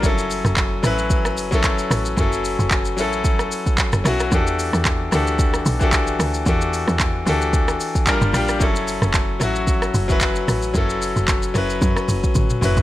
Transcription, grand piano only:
X:1
M:4/4
L:1/16
Q:"Swing 16ths" 1/4=112
K:F#phr
V:1 name="Grand piano"
[F,CEA]4- [F,CEA] z [F,CEB]4 z [F,CEA]4 z | [F,CEA]4- [F,CEA] z [F,CEA]6 z2 [F,CEF]2 | [E,DFGA]4- [E,DFGA] z [E,DFGA]4 z [E,DFGA]4 z | [E,DFGA]4- [E,DFGA] z [E,DFGA]6 [G,D=F_B]2 [G,DFG]2 |
[F,CEA]4- [F,CEA] z [F,CEF]4 z [F,CEB]4 z | [F,CEA]4- [F,CEA] z [F,CEB]6 z2 [F,CEB]2 |]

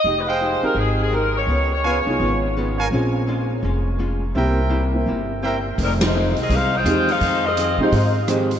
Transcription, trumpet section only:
X:1
M:4/4
L:1/8
Q:"Swing" 1/4=167
K:Fm
V:1 name="Trumpet section"
z [Aefg]3 z4 | z2 [_cdfa] z4 [Bdfa] | z8 | [Bc=eg]3 z3 [Bceg] z |
z8 | z8 |]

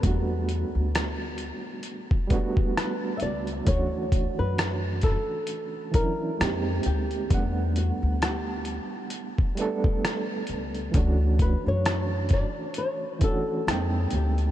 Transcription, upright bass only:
X:1
M:4/4
L:1/16
Q:"Swing 16ths" 1/4=66
K:Edor
V:1 name="Upright bass" clef=bass
E,,3 D,,4 z6 z C,,2 | D,,3 F,,4 z4 z =F,,2 D,,2 | E,,3 D,,4 z6 z C,,2 | D,,3 F,,4 z4 z =F,,2 D,,2 |]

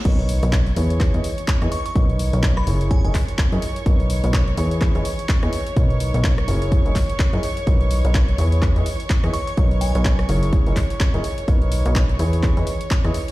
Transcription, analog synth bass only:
X:1
M:4/4
L:1/16
Q:"Swing 16ths" 1/4=126
K:B
V:1 name="Analog synth bass" clef=bass
B,,,3 B,,,3 E,,3 E,, z3 E,, z2 | B,,,3 B,,,3 F,,,3 F,,, z3 F,, z2 | B,,,3 B,,,3 E,,3 E,, z3 E,, z2 | B,,,3 B,,,3 F,,,3 F,,, z3 F,, z2 |
B,,,3 B,,,3 E,,3 E,, z3 E,, z2 | B,,,3 B,,,3 F,,,3 F,,, z3 F,,, z2 | B,,,3 B,,,3 E,,3 E,, z3 E,, z2 |]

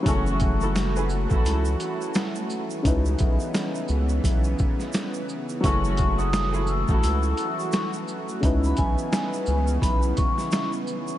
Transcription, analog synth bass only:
X:1
M:4/4
L:1/16
Q:"Swing 16ths" 1/4=86
K:C#m
V:1 name="Analog synth bass" clef=bass
F,,,6- F,,, A,,, C,,2 z6 | C,,2 B,,, z3 C,,2 B,,,2 z6 | F,,,6- F,,, A,,, C,,2 z6 | C,,2 B,,, z3 C,,2 B,,,2 z6 |]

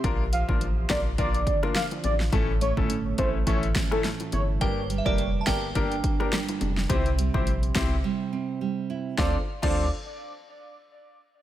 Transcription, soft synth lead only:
X:1
M:4/4
L:1/16
Q:"Swing 16ths" 1/4=105
K:Dm
V:1 name="Soft synth lead"
z2 f z3 d z d3 z f z d z | z2 ^c z3 =c z ^c z2 A z2 c z | z16 | z16 |
d z2 d2 z8 z3 |]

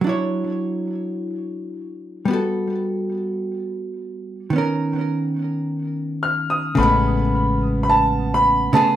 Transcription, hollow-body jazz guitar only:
X:1
M:4/4
L:1/8
Q:"Swing 16ths" 1/4=107
K:A
V:1 name="Hollow-body jazz guitar"
[F,DEc]8 | [=G,B,FA]8 | [^D,B,C^A]8 | [C,G,A,B,]6- [C,G,A,B,] [C,A,B,G] |]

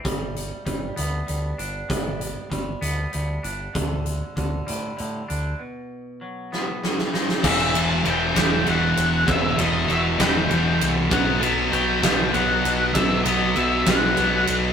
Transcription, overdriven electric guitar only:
X:1
M:6/8
L:1/8
Q:3/8=65
K:G
V:1 name="Overdriven electric guitar" clef=bass
z6 | z6 | z6 | z6 |
[K:Em] [E,,B,,E,] [E,,B,,E,] [E,,B,,E,] [E,,B,,E,] [E,,B,,E,]2 | [E,,B,,E,] [E,,B,,E,] [E,,B,,E,] [E,,B,,E,] [E,,B,,E,]2 | [B,,F,B,] [B,,F,B,] [B,,F,B,] [B,,F,B,] [B,,F,B,]2 | [B,,F,B,] [B,,F,B,] [B,,F,B,] [B,,F,B,] [B,,F,B,]2 |]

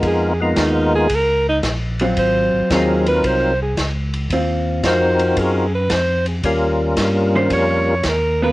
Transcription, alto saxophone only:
X:1
M:4/4
L:1/8
Q:"Swing" 1/4=112
K:Abmix
V:1 name="Alto saxophone"
A _C E A B E z2 | c2 A _c =c A z2 | z2 c2 A _c =c A | z4 d2 B _c |]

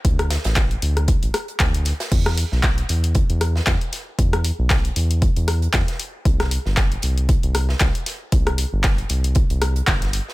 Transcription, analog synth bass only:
X:1
M:4/4
L:1/16
Q:"Swing 16ths" 1/4=116
K:Em
V:1 name="Analog synth bass" clef=bass
D,,2 z A,,,2 z D,,2 z A,,, z2 D,,2 z2 | E,,2 z B,,,2 z E,,2 z E,,2 z E,, z3 | E,,2 z B,,,2 z E,,2 z E,,2 z E,, z3 | C,,2 z G,,,2 z C,,2 z C,,2 z C,, z3 |
C,,2 z G,,,2 z C,,2 z C,,2 z G,,,2 z2 |]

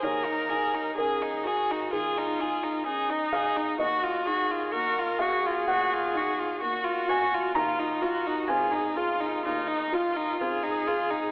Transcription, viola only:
X:1
M:4/4
L:1/8
Q:1/4=64
K:Ebdor
V:1 name="Viola"
B2 A G F2 E2 | G A B A3 G2 | F G A F E F A2 |]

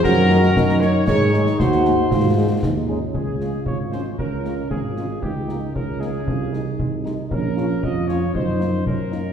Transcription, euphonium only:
X:1
M:2/4
L:1/8
Q:1/4=116
K:Db
V:1 name="Euphonium"
G2 E2 | A2 G2 | F2 E D | F4 |
D2 F2 | E2 D2 | F E3 | D2 F2 |
E2 D2 |]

